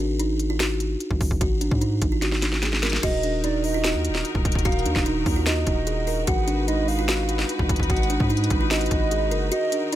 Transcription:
0.00 0.96 G#1 loud
0.00 0.17 D4 medium
0.19 0.48 D#4 medium
0.19 closed hi-hat medium
0.40 closed hi-hat medium
0.50 0.59 F4 medium
0.60 1.37 F#4 medium
0.60 snare loud
0.60 closed hi-hat medium
0.80 closed hi-hat medium
1.00 closed hi-hat medium
1.11 1.20 G#1 loud
1.11 kick medium
1.21 1.30 G#1 loud
1.21 kick loud
1.21 open hi-hat medium
1.31 1.40 G#1 loud
1.31 kick medium
1.41 1.70 G#1 loud
1.41 1.59 F#4 medium
1.41 kick loud
1.41 closed hi-hat medium
1.61 1.79 D4 medium
1.61 closed hi-hat medium
1.71 2.01 G#2 loud
1.71 kick medium
1.81 2.10 D#4 medium
1.81 closed hi-hat medium
2.02 2.99 G#1 loud
2.02 kick loud
2.02 closed hi-hat medium
2.12 2.21 F4 medium
2.22 2.60 F#4 medium
2.22 snare medium
2.22 closed hi-hat medium
2.32 snare medium
2.42 snare medium
2.42 closed hi-hat medium
2.52 snare medium
2.63 2.81 G#4 medium
2.63 snare medium
2.63 closed hi-hat medium
2.73 snare medium
2.83 3.01 A#4 medium
2.83 snare loud
2.83 closed hi-hat medium
2.90 snare loud
2.90 closed hi-hat medium
2.96 closed hi-hat medium
3.03 3.96 D#1 loud
3.03 6.24 D#3 medium
3.03 6.24 D#4 medium
3.03 9.96 F#4 medium
3.03 3.21 F#4 loud
3.03 6.24 A#4 medium
3.03 3.41 D#5 loud
3.03 kick loud
3.03 closed hi-hat medium
3.03 crash loud
3.23 3.42 D4 medium
3.23 closed hi-hat medium
3.44 3.72 D#4 medium
3.44 3.63 D5 medium
3.44 closed hi-hat medium
3.64 4.21 D#5 medium
3.64 open hi-hat medium
3.74 3.83 F4 medium
3.84 4.62 F#4 medium
3.84 snare loud
3.84 closed hi-hat medium
3.94 4.11 D#2 loud
4.05 closed hi-hat medium
4.10 4.24 D#1 loud
4.15 snare medium
4.25 closed hi-hat medium
4.35 4.44 D#1 loud
4.35 kick loud
4.45 4.55 D#1 loud
4.45 kick loud
4.45 closed hi-hat medium
4.52 4.65 D#1 loud
4.52 kick medium
4.52 closed hi-hat medium
4.59 closed hi-hat medium
4.65 4.87 D#1 loud
4.65 4.83 F#4 loud
4.65 5.04 F5 loud
4.65 kick loud
4.65 closed hi-hat medium
4.72 closed hi-hat medium
4.79 closed hi-hat soft
4.86 4.95 D#2 loud
4.86 5.04 D4 medium
4.86 closed hi-hat medium
4.96 5.25 D#1 loud
4.96 kick loud
4.96 snare medium
5.06 5.35 D#4 medium
5.06 closed hi-hat medium
5.26 5.65 D#2 loud
5.26 kick loud
5.26 open hi-hat medium
5.36 5.45 F4 medium
5.46 5.85 F#4 medium
5.46 6.24 D#5 medium
5.46 snare loud
5.46 closed hi-hat medium
5.67 6.25 D#1 loud
5.67 kick loud
5.67 closed hi-hat medium
5.87 6.05 G#4 medium
5.87 closed hi-hat medium
6.07 6.25 A#4 medium
6.07 open hi-hat medium
6.27 7.45 G#1 loud
6.27 9.49 G#3 medium
6.27 9.96 D#4 medium
6.27 6.45 F#4 loud
6.27 9.49 B4 medium
6.27 6.66 F#5 loud
6.27 kick loud
6.27 closed hi-hat medium
6.48 6.66 D4 medium
6.48 closed hi-hat medium
6.68 6.97 D#4 medium
6.68 6.87 D#5 medium
6.68 closed hi-hat medium
6.88 7.45 F5 medium
6.88 open hi-hat medium
6.99 7.08 F4 medium
7.08 7.86 F#4 medium
7.08 snare loud
7.08 closed hi-hat medium
7.29 closed hi-hat medium
7.39 snare medium
7.49 closed hi-hat medium
7.59 7.69 G#1 loud
7.59 kick medium
7.69 7.79 G#1 loud
7.69 kick loud
7.69 closed hi-hat medium
7.76 7.89 G#1 loud
7.76 kick medium
7.76 closed hi-hat medium
7.83 closed hi-hat medium
7.89 8.19 G#1 loud
7.89 8.08 F#4 medium
7.89 8.28 F#5 loud
7.89 kick loud
7.89 closed hi-hat medium
7.97 closed hi-hat medium
8.03 closed hi-hat medium
8.10 8.28 D4 medium
8.10 closed hi-hat medium
8.20 8.49 G#2 loud
8.20 kick loud
8.30 8.59 D#4 medium
8.30 closed hi-hat soft
8.37 closed hi-hat medium
8.44 closed hi-hat medium
8.50 8.89 G#1 loud
8.50 kick loud
8.50 closed hi-hat medium
8.61 8.70 F4 medium
8.71 9.09 F#4 medium
8.71 9.48 D#5 loud
8.71 snare loud
8.71 closed hi-hat medium
8.76 closed hi-hat medium
8.81 closed hi-hat medium
8.86 closed hi-hat medium
8.91 9.33 G#1 loud
8.91 kick loud
8.91 closed hi-hat medium
9.11 9.30 G#4 medium
9.11 closed hi-hat medium
9.31 9.51 F#1 loud
9.31 9.49 A#4 medium
9.31 closed hi-hat medium
9.52 9.96 D#3 medium
9.52 9.70 F#4 loud
9.52 9.96 A#4 medium
9.52 9.90 D#5 loud
9.52 closed hi-hat medium
9.72 9.90 D4 medium
9.72 closed hi-hat medium
9.92 9.96 D#4 medium
9.92 9.96 D5 medium
9.92 closed hi-hat medium

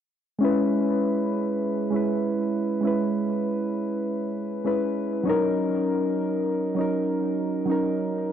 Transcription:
0.38 1.88 G#3 medium
0.38 1.89 C#4 medium
0.43 1.90 E4 medium
0.43 1.91 B4 loud
1.90 2.79 G#3 medium
1.90 2.80 C#4 medium
1.94 2.81 E4 medium
1.94 2.82 B4 medium
2.81 4.61 G#3 medium
2.81 4.62 C#4 medium
2.85 4.63 E4 medium
2.85 4.64 B4 medium
4.64 5.22 G#3 medium
4.64 5.23 C#4 medium
4.64 5.23 E4 medium
4.64 5.24 B4 medium
5.23 6.73 F#3 medium
5.23 6.74 C#4 medium
5.23 6.75 D#4 medium
5.29 6.76 A#4 loud
6.75 7.64 F#3 medium
6.75 7.65 C#4 medium
6.75 7.66 D#4 medium
6.81 7.67 A#4 medium
7.65 8.32 F#3 medium
7.65 8.32 C#4 medium
7.69 8.32 D#4 medium
7.69 8.32 A#4 medium

